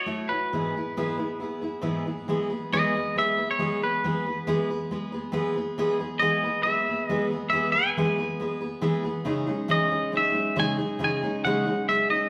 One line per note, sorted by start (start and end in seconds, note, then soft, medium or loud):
0.00 0.30 C#5 medium
0.06 0.29 A3 medium
0.06 0.30 E4 medium
0.06 0.29 F#4 medium
0.06 0.28 C#5 medium
0.29 0.53 E4 soft
0.29 0.52 F#4 soft
0.29 2.02 B4 medium
0.29 0.52 C#5 soft
0.53 0.74 G#2 medium
0.53 0.75 E3 medium
0.53 0.75 B3 medium
0.53 0.75 E4 medium
0.53 0.75 G#4 medium
0.53 0.74 B4 medium
0.75 0.96 B3 soft
0.75 0.97 E4 soft
0.75 0.96 G#4 soft
0.75 0.97 B4 soft
0.97 1.19 G#2 medium
0.97 1.19 E3 medium
0.97 1.19 B3 medium
0.97 1.18 E4 loud
0.97 1.18 G#4 medium
0.97 1.16 B4 loud
1.17 1.39 B3 soft
1.17 1.40 E4 medium
1.17 1.41 G#4 medium
1.17 1.40 B4 medium
1.40 1.62 B3 medium
1.40 1.62 E4 medium
1.40 1.61 G#4 medium
1.40 1.60 B4 medium
1.61 1.82 B3 soft
1.61 1.81 E4 soft
1.61 1.82 G#4 medium
1.61 1.81 B4 medium
1.81 2.05 G#2 medium
1.81 2.05 E3 medium
1.81 2.06 B3 medium
1.81 2.05 E4 medium
1.81 2.06 G#4 medium
1.81 2.04 B4 medium
2.06 2.28 B3 soft
2.06 2.29 E4 soft
2.06 2.28 G#4 soft
2.06 2.28 B4 medium
2.28 2.50 E3 medium
2.28 2.50 G#3 medium
2.28 2.51 B3 medium
2.28 2.50 G#4 medium
2.28 2.48 B4 medium
2.50 2.72 B3 medium
2.50 2.73 G#4 medium
2.50 2.72 B4 medium
2.72 2.94 E3 medium
2.72 2.94 G#3 medium
2.72 2.95 B3 loud
2.72 2.95 G#4 medium
2.72 2.93 B4 medium
2.72 3.18 D#5 loud
2.95 3.16 B3 soft
2.95 3.17 G#4 medium
2.95 3.16 B4 medium
3.16 3.38 G#3 medium
3.16 3.38 B3 medium
3.16 3.37 G#4 medium
3.16 3.36 B4 medium
3.16 3.50 E5 loud
3.37 3.59 B3 soft
3.37 3.59 G#4 medium
3.37 3.59 B4 medium
3.51 3.80 C#5 medium
3.59 3.81 E3 medium
3.59 3.81 G#3 medium
3.59 3.82 B3 medium
3.59 3.82 G#4 medium
3.59 3.81 B4 medium
3.82 4.04 B3 soft
3.82 4.04 G#4 medium
3.82 4.04 B4 medium
3.82 4.66 B4 medium
4.04 4.26 E3 medium
4.04 4.26 G#3 medium
4.04 4.26 B3 medium
4.04 4.25 G#4 medium
4.04 4.25 B4 medium
4.26 4.46 B3 soft
4.26 4.48 G#4 soft
4.26 4.47 B4 medium
4.47 4.69 E3 loud
4.47 4.69 G#3 loud
4.47 4.69 B3 loud
4.47 4.70 G#4 loud
4.47 4.69 B4 loud
4.70 4.91 B3 soft
4.70 4.91 G#4 medium
4.70 4.91 B4 medium
4.91 5.13 G#3 medium
4.91 5.13 B3 medium
4.91 5.13 G#4 medium
4.91 5.11 B4 medium
5.12 5.32 B3 medium
5.12 5.32 G#4 medium
5.12 5.32 B4 medium
5.32 5.55 E3 medium
5.32 5.55 G#3 medium
5.32 5.55 B3 loud
5.32 5.55 G#4 medium
5.32 5.55 B4 loud
5.56 5.77 B3 medium
5.56 5.78 G#4 medium
5.56 5.78 B4 medium
5.78 6.00 E3 medium
5.78 6.00 G#3 medium
5.78 6.00 B3 medium
5.78 5.99 G#4 loud
5.78 5.98 B4 loud
6.00 6.21 B3 soft
6.00 6.21 G#4 medium
6.00 6.21 B4 medium
6.20 6.43 E3 medium
6.20 6.43 G#3 medium
6.20 6.44 B3 medium
6.20 6.43 G#4 loud
6.20 6.42 B4 medium
6.20 6.61 D#5 loud
6.44 6.64 B3 soft
6.44 6.65 G#4 medium
6.44 6.65 B4 medium
6.63 6.87 G#3 medium
6.63 6.87 B3 medium
6.63 6.87 G#4 medium
6.63 6.87 B4 medium
6.63 7.07 E5 loud
6.88 7.09 B3 soft
6.88 7.10 G#4 soft
6.88 7.09 B4 medium
7.07 7.31 E3 medium
7.07 7.31 G#3 medium
7.07 7.31 B3 medium
7.07 7.31 G#4 medium
7.07 7.25 D#5 loud
7.12 7.29 B4 medium
7.30 7.52 B3 medium
7.30 7.53 G#4 medium
7.30 7.52 B4 medium
7.50 7.74 E3 medium
7.50 7.74 G#3 medium
7.50 7.74 B3 medium
7.50 7.72 E5 medium
7.54 7.75 G#4 medium
7.54 7.73 B4 medium
7.72 7.96 B4 medium
7.72 8.99 G#5 loud
7.77 7.97 B3 soft
7.77 7.97 G#4 soft
7.97 8.18 E3 medium
7.97 8.18 G#3 medium
7.97 8.19 B3 medium
7.97 8.17 G#4 loud
7.97 8.17 B4 loud
8.18 8.39 B3 soft
8.18 8.40 G#4 medium
8.18 8.39 B4 medium
8.40 8.61 G#3 medium
8.40 8.62 B3 medium
8.40 8.61 G#4 medium
8.40 8.60 B4 medium
8.61 8.81 B3 soft
8.61 8.81 G#4 medium
8.61 8.82 B4 medium
8.81 9.04 E3 medium
8.81 9.04 G#3 medium
8.81 9.04 B3 loud
8.81 9.03 G#4 loud
8.81 9.02 B4 loud
9.03 9.25 B3 soft
9.03 9.26 G#4 medium
9.03 9.25 B4 medium
9.25 9.47 C#3 medium
9.25 9.48 E3 medium
9.25 9.47 G#3 medium
9.25 9.47 C#4 medium
9.25 9.46 D#4 medium
9.25 9.45 G#4 medium
9.47 9.68 G#3 soft
9.47 9.68 C#4 medium
9.47 9.68 D#4 medium
9.47 9.69 G#4 medium
9.68 9.91 C#3 medium
9.68 9.91 E3 medium
9.68 9.91 G#3 medium
9.68 9.90 C#4 medium
9.68 9.89 D#4 medium
9.68 9.88 G#4 loud
9.68 10.11 D#5 medium
9.89 10.11 G#3 soft
9.89 10.12 C#4 soft
9.89 10.12 D#4 medium
9.89 10.12 G#4 medium
10.12 10.33 G#3 medium
10.12 10.33 C#4 medium
10.12 10.32 D#4 medium
10.12 10.31 G#4 medium
10.17 10.59 E5 medium
10.32 10.55 G#3 soft
10.32 10.55 C#4 medium
10.32 10.56 D#4 soft
10.32 10.55 G#4 medium
10.56 10.78 C#3 medium
10.56 10.78 E3 medium
10.56 10.78 G#3 medium
10.56 10.78 C#4 medium
10.56 10.77 D#4 medium
10.56 10.77 G#4 medium
10.56 11.03 G#5 loud
10.78 10.99 G#3 soft
10.78 10.99 C#4 soft
10.78 10.99 D#4 medium
10.78 11.00 G#4 medium
10.99 11.21 C#3 medium
10.99 11.22 E3 medium
10.99 11.22 G#3 medium
10.99 11.22 C#4 medium
10.99 11.22 D#4 medium
10.99 11.21 G#4 medium
11.04 11.44 G#5 loud
11.22 11.45 G#3 soft
11.22 11.44 C#4 soft
11.22 11.44 D#4 medium
11.22 11.44 G#4 medium
11.45 11.66 C#3 medium
11.45 11.66 E3 medium
11.45 11.66 G#3 medium
11.45 11.66 C#4 medium
11.45 11.66 D#4 medium
11.45 11.64 G#4 loud
11.45 11.88 F#5 medium
11.65 11.87 G#3 medium
11.65 11.88 C#4 medium
11.65 11.88 D#4 soft
11.65 11.87 G#4 medium
11.89 12.09 G#3 medium
11.89 12.10 C#4 medium
11.89 12.10 D#4 medium
11.89 12.09 G#4 medium
11.89 12.10 E5 medium
12.10 12.29 G#3 soft
12.10 12.29 C#4 soft
12.10 12.29 D#4 medium
12.10 12.29 G#4 medium
12.10 12.29 D#5 medium